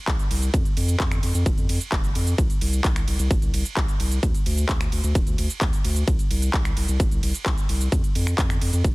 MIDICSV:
0, 0, Header, 1, 3, 480
1, 0, Start_track
1, 0, Tempo, 461538
1, 560, Time_signature, 4, 2, 24, 8
1, 9306, End_track
2, 0, Start_track
2, 0, Title_t, "Sub bass"
2, 0, Program_c, 0, 38
2, 78, Note_on_c, 0, 36, 97
2, 178, Note_off_c, 0, 36, 0
2, 318, Note_on_c, 0, 36, 93
2, 517, Note_off_c, 0, 36, 0
2, 559, Note_on_c, 0, 41, 105
2, 658, Note_off_c, 0, 41, 0
2, 800, Note_on_c, 0, 41, 92
2, 998, Note_off_c, 0, 41, 0
2, 1039, Note_on_c, 0, 41, 103
2, 1238, Note_off_c, 0, 41, 0
2, 1280, Note_on_c, 0, 41, 89
2, 1379, Note_off_c, 0, 41, 0
2, 1400, Note_on_c, 0, 41, 106
2, 1499, Note_off_c, 0, 41, 0
2, 1519, Note_on_c, 0, 29, 85
2, 1618, Note_off_c, 0, 29, 0
2, 1640, Note_on_c, 0, 41, 85
2, 1739, Note_off_c, 0, 41, 0
2, 1759, Note_on_c, 0, 41, 100
2, 1859, Note_off_c, 0, 41, 0
2, 1999, Note_on_c, 0, 29, 91
2, 2198, Note_off_c, 0, 29, 0
2, 2239, Note_on_c, 0, 41, 91
2, 2438, Note_off_c, 0, 41, 0
2, 2479, Note_on_c, 0, 36, 107
2, 2578, Note_off_c, 0, 36, 0
2, 2719, Note_on_c, 0, 36, 92
2, 2918, Note_off_c, 0, 36, 0
2, 2959, Note_on_c, 0, 36, 98
2, 3158, Note_off_c, 0, 36, 0
2, 3200, Note_on_c, 0, 36, 88
2, 3299, Note_off_c, 0, 36, 0
2, 3319, Note_on_c, 0, 36, 102
2, 3418, Note_off_c, 0, 36, 0
2, 3439, Note_on_c, 0, 31, 89
2, 3538, Note_off_c, 0, 31, 0
2, 3559, Note_on_c, 0, 36, 86
2, 3658, Note_off_c, 0, 36, 0
2, 3680, Note_on_c, 0, 36, 99
2, 3779, Note_off_c, 0, 36, 0
2, 3919, Note_on_c, 0, 36, 100
2, 4018, Note_off_c, 0, 36, 0
2, 4159, Note_on_c, 0, 36, 88
2, 4358, Note_off_c, 0, 36, 0
2, 4398, Note_on_c, 0, 38, 100
2, 4498, Note_off_c, 0, 38, 0
2, 4639, Note_on_c, 0, 38, 97
2, 4837, Note_off_c, 0, 38, 0
2, 4879, Note_on_c, 0, 38, 96
2, 5077, Note_off_c, 0, 38, 0
2, 5119, Note_on_c, 0, 38, 84
2, 5218, Note_off_c, 0, 38, 0
2, 5239, Note_on_c, 0, 38, 98
2, 5338, Note_off_c, 0, 38, 0
2, 5358, Note_on_c, 0, 26, 86
2, 5458, Note_off_c, 0, 26, 0
2, 5479, Note_on_c, 0, 38, 87
2, 5578, Note_off_c, 0, 38, 0
2, 5599, Note_on_c, 0, 38, 100
2, 5698, Note_off_c, 0, 38, 0
2, 5838, Note_on_c, 0, 38, 98
2, 5938, Note_off_c, 0, 38, 0
2, 6079, Note_on_c, 0, 38, 87
2, 6278, Note_off_c, 0, 38, 0
2, 6318, Note_on_c, 0, 36, 104
2, 6418, Note_off_c, 0, 36, 0
2, 6559, Note_on_c, 0, 36, 95
2, 6758, Note_off_c, 0, 36, 0
2, 6798, Note_on_c, 0, 36, 103
2, 6997, Note_off_c, 0, 36, 0
2, 7039, Note_on_c, 0, 36, 85
2, 7139, Note_off_c, 0, 36, 0
2, 7160, Note_on_c, 0, 36, 103
2, 7259, Note_off_c, 0, 36, 0
2, 7279, Note_on_c, 0, 31, 88
2, 7378, Note_off_c, 0, 31, 0
2, 7400, Note_on_c, 0, 36, 83
2, 7499, Note_off_c, 0, 36, 0
2, 7519, Note_on_c, 0, 36, 102
2, 7618, Note_off_c, 0, 36, 0
2, 7759, Note_on_c, 0, 36, 103
2, 7858, Note_off_c, 0, 36, 0
2, 7999, Note_on_c, 0, 36, 95
2, 8198, Note_off_c, 0, 36, 0
2, 8238, Note_on_c, 0, 41, 101
2, 8338, Note_off_c, 0, 41, 0
2, 8480, Note_on_c, 0, 41, 96
2, 8678, Note_off_c, 0, 41, 0
2, 8718, Note_on_c, 0, 41, 100
2, 8917, Note_off_c, 0, 41, 0
2, 8959, Note_on_c, 0, 41, 88
2, 9058, Note_off_c, 0, 41, 0
2, 9079, Note_on_c, 0, 41, 98
2, 9178, Note_off_c, 0, 41, 0
2, 9199, Note_on_c, 0, 29, 88
2, 9298, Note_off_c, 0, 29, 0
2, 9306, End_track
3, 0, Start_track
3, 0, Title_t, "Drums"
3, 79, Note_on_c, 9, 36, 123
3, 81, Note_on_c, 9, 39, 123
3, 81, Note_on_c, 9, 42, 64
3, 81, Note_on_c, 9, 51, 54
3, 84, Note_on_c, 9, 82, 53
3, 183, Note_off_c, 9, 36, 0
3, 185, Note_off_c, 9, 39, 0
3, 185, Note_off_c, 9, 42, 0
3, 185, Note_off_c, 9, 51, 0
3, 188, Note_off_c, 9, 82, 0
3, 201, Note_on_c, 9, 42, 42
3, 204, Note_on_c, 9, 82, 34
3, 305, Note_off_c, 9, 42, 0
3, 308, Note_off_c, 9, 82, 0
3, 320, Note_on_c, 9, 46, 115
3, 320, Note_on_c, 9, 51, 79
3, 424, Note_off_c, 9, 46, 0
3, 424, Note_off_c, 9, 51, 0
3, 440, Note_on_c, 9, 42, 39
3, 443, Note_on_c, 9, 82, 66
3, 544, Note_off_c, 9, 42, 0
3, 547, Note_off_c, 9, 82, 0
3, 559, Note_on_c, 9, 36, 124
3, 560, Note_on_c, 9, 42, 62
3, 560, Note_on_c, 9, 51, 58
3, 563, Note_on_c, 9, 82, 59
3, 663, Note_off_c, 9, 36, 0
3, 664, Note_off_c, 9, 42, 0
3, 664, Note_off_c, 9, 51, 0
3, 667, Note_off_c, 9, 82, 0
3, 680, Note_on_c, 9, 42, 38
3, 683, Note_on_c, 9, 82, 35
3, 784, Note_off_c, 9, 42, 0
3, 787, Note_off_c, 9, 82, 0
3, 799, Note_on_c, 9, 46, 114
3, 799, Note_on_c, 9, 51, 78
3, 903, Note_off_c, 9, 46, 0
3, 903, Note_off_c, 9, 51, 0
3, 920, Note_on_c, 9, 42, 41
3, 923, Note_on_c, 9, 82, 73
3, 1024, Note_off_c, 9, 42, 0
3, 1027, Note_off_c, 9, 82, 0
3, 1039, Note_on_c, 9, 36, 127
3, 1040, Note_on_c, 9, 42, 64
3, 1041, Note_on_c, 9, 39, 115
3, 1044, Note_on_c, 9, 82, 52
3, 1143, Note_off_c, 9, 36, 0
3, 1144, Note_off_c, 9, 42, 0
3, 1145, Note_off_c, 9, 39, 0
3, 1148, Note_off_c, 9, 82, 0
3, 1160, Note_on_c, 9, 26, 68
3, 1160, Note_on_c, 9, 42, 38
3, 1163, Note_on_c, 9, 82, 34
3, 1264, Note_off_c, 9, 26, 0
3, 1264, Note_off_c, 9, 42, 0
3, 1267, Note_off_c, 9, 82, 0
3, 1279, Note_on_c, 9, 46, 107
3, 1279, Note_on_c, 9, 51, 79
3, 1383, Note_off_c, 9, 46, 0
3, 1383, Note_off_c, 9, 51, 0
3, 1399, Note_on_c, 9, 42, 38
3, 1403, Note_on_c, 9, 82, 70
3, 1503, Note_off_c, 9, 42, 0
3, 1507, Note_off_c, 9, 82, 0
3, 1519, Note_on_c, 9, 36, 127
3, 1520, Note_on_c, 9, 42, 63
3, 1520, Note_on_c, 9, 51, 61
3, 1523, Note_on_c, 9, 82, 59
3, 1623, Note_off_c, 9, 36, 0
3, 1624, Note_off_c, 9, 42, 0
3, 1624, Note_off_c, 9, 51, 0
3, 1627, Note_off_c, 9, 82, 0
3, 1639, Note_on_c, 9, 42, 38
3, 1643, Note_on_c, 9, 82, 34
3, 1743, Note_off_c, 9, 42, 0
3, 1747, Note_off_c, 9, 82, 0
3, 1759, Note_on_c, 9, 46, 110
3, 1759, Note_on_c, 9, 51, 86
3, 1863, Note_off_c, 9, 46, 0
3, 1863, Note_off_c, 9, 51, 0
3, 1880, Note_on_c, 9, 42, 36
3, 1883, Note_on_c, 9, 82, 69
3, 1984, Note_off_c, 9, 42, 0
3, 1987, Note_off_c, 9, 82, 0
3, 1999, Note_on_c, 9, 36, 118
3, 2000, Note_on_c, 9, 39, 115
3, 2000, Note_on_c, 9, 42, 61
3, 2003, Note_on_c, 9, 82, 56
3, 2103, Note_off_c, 9, 36, 0
3, 2104, Note_off_c, 9, 39, 0
3, 2104, Note_off_c, 9, 42, 0
3, 2107, Note_off_c, 9, 82, 0
3, 2119, Note_on_c, 9, 42, 38
3, 2123, Note_on_c, 9, 82, 36
3, 2223, Note_off_c, 9, 42, 0
3, 2227, Note_off_c, 9, 82, 0
3, 2239, Note_on_c, 9, 46, 118
3, 2239, Note_on_c, 9, 51, 82
3, 2343, Note_off_c, 9, 46, 0
3, 2343, Note_off_c, 9, 51, 0
3, 2359, Note_on_c, 9, 42, 41
3, 2363, Note_on_c, 9, 82, 66
3, 2463, Note_off_c, 9, 42, 0
3, 2467, Note_off_c, 9, 82, 0
3, 2479, Note_on_c, 9, 36, 124
3, 2479, Note_on_c, 9, 42, 65
3, 2479, Note_on_c, 9, 51, 61
3, 2482, Note_on_c, 9, 82, 59
3, 2583, Note_off_c, 9, 36, 0
3, 2583, Note_off_c, 9, 42, 0
3, 2583, Note_off_c, 9, 51, 0
3, 2586, Note_off_c, 9, 82, 0
3, 2599, Note_on_c, 9, 42, 40
3, 2602, Note_on_c, 9, 82, 35
3, 2703, Note_off_c, 9, 42, 0
3, 2706, Note_off_c, 9, 82, 0
3, 2719, Note_on_c, 9, 46, 109
3, 2719, Note_on_c, 9, 51, 81
3, 2823, Note_off_c, 9, 46, 0
3, 2823, Note_off_c, 9, 51, 0
3, 2839, Note_on_c, 9, 42, 40
3, 2842, Note_on_c, 9, 82, 68
3, 2943, Note_off_c, 9, 42, 0
3, 2946, Note_off_c, 9, 82, 0
3, 2958, Note_on_c, 9, 36, 121
3, 2960, Note_on_c, 9, 39, 110
3, 2960, Note_on_c, 9, 42, 59
3, 2963, Note_on_c, 9, 82, 57
3, 3062, Note_off_c, 9, 36, 0
3, 3064, Note_off_c, 9, 39, 0
3, 3064, Note_off_c, 9, 42, 0
3, 3067, Note_off_c, 9, 82, 0
3, 3079, Note_on_c, 9, 26, 65
3, 3079, Note_on_c, 9, 42, 37
3, 3083, Note_on_c, 9, 82, 34
3, 3183, Note_off_c, 9, 26, 0
3, 3183, Note_off_c, 9, 42, 0
3, 3187, Note_off_c, 9, 82, 0
3, 3200, Note_on_c, 9, 46, 104
3, 3200, Note_on_c, 9, 51, 86
3, 3304, Note_off_c, 9, 46, 0
3, 3304, Note_off_c, 9, 51, 0
3, 3320, Note_on_c, 9, 42, 38
3, 3323, Note_on_c, 9, 82, 72
3, 3424, Note_off_c, 9, 42, 0
3, 3427, Note_off_c, 9, 82, 0
3, 3438, Note_on_c, 9, 36, 127
3, 3439, Note_on_c, 9, 42, 65
3, 3439, Note_on_c, 9, 51, 60
3, 3443, Note_on_c, 9, 82, 59
3, 3542, Note_off_c, 9, 36, 0
3, 3543, Note_off_c, 9, 42, 0
3, 3543, Note_off_c, 9, 51, 0
3, 3547, Note_off_c, 9, 82, 0
3, 3559, Note_on_c, 9, 42, 41
3, 3562, Note_on_c, 9, 82, 34
3, 3663, Note_off_c, 9, 42, 0
3, 3666, Note_off_c, 9, 82, 0
3, 3679, Note_on_c, 9, 46, 112
3, 3679, Note_on_c, 9, 51, 89
3, 3783, Note_off_c, 9, 46, 0
3, 3783, Note_off_c, 9, 51, 0
3, 3799, Note_on_c, 9, 42, 38
3, 3802, Note_on_c, 9, 82, 66
3, 3903, Note_off_c, 9, 42, 0
3, 3906, Note_off_c, 9, 82, 0
3, 3919, Note_on_c, 9, 36, 121
3, 3920, Note_on_c, 9, 39, 116
3, 3920, Note_on_c, 9, 42, 66
3, 3920, Note_on_c, 9, 51, 56
3, 3923, Note_on_c, 9, 82, 59
3, 4023, Note_off_c, 9, 36, 0
3, 4024, Note_off_c, 9, 39, 0
3, 4024, Note_off_c, 9, 42, 0
3, 4024, Note_off_c, 9, 51, 0
3, 4027, Note_off_c, 9, 82, 0
3, 4039, Note_on_c, 9, 42, 39
3, 4042, Note_on_c, 9, 82, 37
3, 4143, Note_off_c, 9, 42, 0
3, 4146, Note_off_c, 9, 82, 0
3, 4158, Note_on_c, 9, 46, 111
3, 4158, Note_on_c, 9, 51, 86
3, 4262, Note_off_c, 9, 46, 0
3, 4262, Note_off_c, 9, 51, 0
3, 4279, Note_on_c, 9, 42, 39
3, 4282, Note_on_c, 9, 82, 67
3, 4383, Note_off_c, 9, 42, 0
3, 4386, Note_off_c, 9, 82, 0
3, 4398, Note_on_c, 9, 36, 117
3, 4399, Note_on_c, 9, 42, 68
3, 4399, Note_on_c, 9, 51, 58
3, 4402, Note_on_c, 9, 82, 61
3, 4502, Note_off_c, 9, 36, 0
3, 4503, Note_off_c, 9, 42, 0
3, 4503, Note_off_c, 9, 51, 0
3, 4506, Note_off_c, 9, 82, 0
3, 4519, Note_on_c, 9, 42, 41
3, 4522, Note_on_c, 9, 82, 36
3, 4623, Note_off_c, 9, 42, 0
3, 4626, Note_off_c, 9, 82, 0
3, 4639, Note_on_c, 9, 46, 102
3, 4639, Note_on_c, 9, 51, 84
3, 4743, Note_off_c, 9, 46, 0
3, 4743, Note_off_c, 9, 51, 0
3, 4759, Note_on_c, 9, 42, 42
3, 4762, Note_on_c, 9, 82, 76
3, 4863, Note_off_c, 9, 42, 0
3, 4866, Note_off_c, 9, 82, 0
3, 4878, Note_on_c, 9, 36, 118
3, 4878, Note_on_c, 9, 42, 64
3, 4879, Note_on_c, 9, 39, 116
3, 4882, Note_on_c, 9, 82, 58
3, 4982, Note_off_c, 9, 36, 0
3, 4982, Note_off_c, 9, 42, 0
3, 4983, Note_off_c, 9, 39, 0
3, 4986, Note_off_c, 9, 82, 0
3, 4999, Note_on_c, 9, 26, 63
3, 4999, Note_on_c, 9, 42, 39
3, 5002, Note_on_c, 9, 82, 38
3, 5103, Note_off_c, 9, 26, 0
3, 5103, Note_off_c, 9, 42, 0
3, 5106, Note_off_c, 9, 82, 0
3, 5119, Note_on_c, 9, 46, 101
3, 5119, Note_on_c, 9, 51, 78
3, 5223, Note_off_c, 9, 46, 0
3, 5223, Note_off_c, 9, 51, 0
3, 5239, Note_on_c, 9, 42, 41
3, 5242, Note_on_c, 9, 82, 72
3, 5343, Note_off_c, 9, 42, 0
3, 5346, Note_off_c, 9, 82, 0
3, 5358, Note_on_c, 9, 36, 123
3, 5359, Note_on_c, 9, 42, 66
3, 5359, Note_on_c, 9, 51, 62
3, 5362, Note_on_c, 9, 82, 61
3, 5462, Note_off_c, 9, 36, 0
3, 5463, Note_off_c, 9, 42, 0
3, 5463, Note_off_c, 9, 51, 0
3, 5466, Note_off_c, 9, 82, 0
3, 5478, Note_on_c, 9, 42, 40
3, 5482, Note_on_c, 9, 82, 36
3, 5582, Note_off_c, 9, 42, 0
3, 5586, Note_off_c, 9, 82, 0
3, 5598, Note_on_c, 9, 46, 107
3, 5598, Note_on_c, 9, 51, 88
3, 5702, Note_off_c, 9, 46, 0
3, 5702, Note_off_c, 9, 51, 0
3, 5718, Note_on_c, 9, 42, 38
3, 5721, Note_on_c, 9, 82, 72
3, 5822, Note_off_c, 9, 42, 0
3, 5825, Note_off_c, 9, 82, 0
3, 5838, Note_on_c, 9, 36, 116
3, 5838, Note_on_c, 9, 42, 64
3, 5839, Note_on_c, 9, 39, 112
3, 5842, Note_on_c, 9, 82, 58
3, 5942, Note_off_c, 9, 36, 0
3, 5942, Note_off_c, 9, 42, 0
3, 5943, Note_off_c, 9, 39, 0
3, 5946, Note_off_c, 9, 82, 0
3, 5959, Note_on_c, 9, 42, 40
3, 5962, Note_on_c, 9, 82, 39
3, 6063, Note_off_c, 9, 42, 0
3, 6066, Note_off_c, 9, 82, 0
3, 6079, Note_on_c, 9, 46, 108
3, 6079, Note_on_c, 9, 51, 88
3, 6183, Note_off_c, 9, 46, 0
3, 6183, Note_off_c, 9, 51, 0
3, 6199, Note_on_c, 9, 42, 41
3, 6202, Note_on_c, 9, 82, 74
3, 6303, Note_off_c, 9, 42, 0
3, 6306, Note_off_c, 9, 82, 0
3, 6318, Note_on_c, 9, 36, 125
3, 6319, Note_on_c, 9, 42, 70
3, 6319, Note_on_c, 9, 51, 60
3, 6322, Note_on_c, 9, 82, 64
3, 6422, Note_off_c, 9, 36, 0
3, 6423, Note_off_c, 9, 42, 0
3, 6423, Note_off_c, 9, 51, 0
3, 6426, Note_off_c, 9, 82, 0
3, 6439, Note_on_c, 9, 42, 41
3, 6442, Note_on_c, 9, 82, 38
3, 6543, Note_off_c, 9, 42, 0
3, 6546, Note_off_c, 9, 82, 0
3, 6559, Note_on_c, 9, 46, 103
3, 6559, Note_on_c, 9, 51, 82
3, 6663, Note_off_c, 9, 46, 0
3, 6663, Note_off_c, 9, 51, 0
3, 6679, Note_on_c, 9, 42, 42
3, 6682, Note_on_c, 9, 82, 76
3, 6783, Note_off_c, 9, 42, 0
3, 6786, Note_off_c, 9, 82, 0
3, 6798, Note_on_c, 9, 36, 124
3, 6799, Note_on_c, 9, 39, 115
3, 6799, Note_on_c, 9, 42, 64
3, 6799, Note_on_c, 9, 51, 56
3, 6802, Note_on_c, 9, 82, 55
3, 6902, Note_off_c, 9, 36, 0
3, 6903, Note_off_c, 9, 39, 0
3, 6903, Note_off_c, 9, 42, 0
3, 6903, Note_off_c, 9, 51, 0
3, 6906, Note_off_c, 9, 82, 0
3, 6919, Note_on_c, 9, 26, 61
3, 6919, Note_on_c, 9, 42, 42
3, 6922, Note_on_c, 9, 82, 37
3, 7023, Note_off_c, 9, 26, 0
3, 7023, Note_off_c, 9, 42, 0
3, 7026, Note_off_c, 9, 82, 0
3, 7038, Note_on_c, 9, 46, 95
3, 7038, Note_on_c, 9, 51, 79
3, 7142, Note_off_c, 9, 46, 0
3, 7142, Note_off_c, 9, 51, 0
3, 7159, Note_on_c, 9, 42, 41
3, 7162, Note_on_c, 9, 82, 74
3, 7263, Note_off_c, 9, 42, 0
3, 7266, Note_off_c, 9, 82, 0
3, 7279, Note_on_c, 9, 36, 122
3, 7279, Note_on_c, 9, 42, 71
3, 7279, Note_on_c, 9, 51, 59
3, 7282, Note_on_c, 9, 82, 60
3, 7383, Note_off_c, 9, 36, 0
3, 7383, Note_off_c, 9, 42, 0
3, 7383, Note_off_c, 9, 51, 0
3, 7386, Note_off_c, 9, 82, 0
3, 7399, Note_on_c, 9, 42, 42
3, 7403, Note_on_c, 9, 82, 36
3, 7503, Note_off_c, 9, 42, 0
3, 7507, Note_off_c, 9, 82, 0
3, 7519, Note_on_c, 9, 46, 109
3, 7519, Note_on_c, 9, 51, 83
3, 7623, Note_off_c, 9, 46, 0
3, 7623, Note_off_c, 9, 51, 0
3, 7639, Note_on_c, 9, 42, 43
3, 7642, Note_on_c, 9, 82, 71
3, 7743, Note_off_c, 9, 42, 0
3, 7746, Note_off_c, 9, 82, 0
3, 7758, Note_on_c, 9, 36, 115
3, 7759, Note_on_c, 9, 42, 68
3, 7760, Note_on_c, 9, 39, 117
3, 7762, Note_on_c, 9, 82, 56
3, 7862, Note_off_c, 9, 36, 0
3, 7863, Note_off_c, 9, 42, 0
3, 7864, Note_off_c, 9, 39, 0
3, 7866, Note_off_c, 9, 82, 0
3, 7879, Note_on_c, 9, 42, 43
3, 7882, Note_on_c, 9, 82, 39
3, 7983, Note_off_c, 9, 42, 0
3, 7986, Note_off_c, 9, 82, 0
3, 7999, Note_on_c, 9, 46, 99
3, 7999, Note_on_c, 9, 51, 79
3, 8103, Note_off_c, 9, 46, 0
3, 8103, Note_off_c, 9, 51, 0
3, 8120, Note_on_c, 9, 42, 42
3, 8123, Note_on_c, 9, 82, 73
3, 8224, Note_off_c, 9, 42, 0
3, 8227, Note_off_c, 9, 82, 0
3, 8238, Note_on_c, 9, 36, 116
3, 8240, Note_on_c, 9, 42, 74
3, 8240, Note_on_c, 9, 51, 55
3, 8244, Note_on_c, 9, 82, 60
3, 8342, Note_off_c, 9, 36, 0
3, 8344, Note_off_c, 9, 42, 0
3, 8344, Note_off_c, 9, 51, 0
3, 8348, Note_off_c, 9, 82, 0
3, 8361, Note_on_c, 9, 42, 42
3, 8364, Note_on_c, 9, 82, 37
3, 8465, Note_off_c, 9, 42, 0
3, 8468, Note_off_c, 9, 82, 0
3, 8480, Note_on_c, 9, 46, 104
3, 8480, Note_on_c, 9, 51, 83
3, 8584, Note_off_c, 9, 46, 0
3, 8584, Note_off_c, 9, 51, 0
3, 8600, Note_on_c, 9, 26, 60
3, 8600, Note_on_c, 9, 42, 44
3, 8604, Note_on_c, 9, 82, 75
3, 8704, Note_off_c, 9, 26, 0
3, 8704, Note_off_c, 9, 42, 0
3, 8708, Note_off_c, 9, 82, 0
3, 8718, Note_on_c, 9, 36, 118
3, 8720, Note_on_c, 9, 42, 68
3, 8721, Note_on_c, 9, 39, 119
3, 8723, Note_on_c, 9, 82, 57
3, 8822, Note_off_c, 9, 36, 0
3, 8824, Note_off_c, 9, 42, 0
3, 8825, Note_off_c, 9, 39, 0
3, 8827, Note_off_c, 9, 82, 0
3, 8840, Note_on_c, 9, 26, 60
3, 8840, Note_on_c, 9, 42, 43
3, 8843, Note_on_c, 9, 82, 36
3, 8944, Note_off_c, 9, 26, 0
3, 8944, Note_off_c, 9, 42, 0
3, 8947, Note_off_c, 9, 82, 0
3, 8960, Note_on_c, 9, 46, 103
3, 8960, Note_on_c, 9, 51, 77
3, 9064, Note_off_c, 9, 46, 0
3, 9064, Note_off_c, 9, 51, 0
3, 9079, Note_on_c, 9, 42, 42
3, 9082, Note_on_c, 9, 82, 69
3, 9183, Note_off_c, 9, 42, 0
3, 9186, Note_off_c, 9, 82, 0
3, 9198, Note_on_c, 9, 36, 119
3, 9200, Note_on_c, 9, 42, 73
3, 9200, Note_on_c, 9, 51, 57
3, 9203, Note_on_c, 9, 82, 57
3, 9302, Note_off_c, 9, 36, 0
3, 9304, Note_off_c, 9, 42, 0
3, 9304, Note_off_c, 9, 51, 0
3, 9306, Note_off_c, 9, 82, 0
3, 9306, End_track
0, 0, End_of_file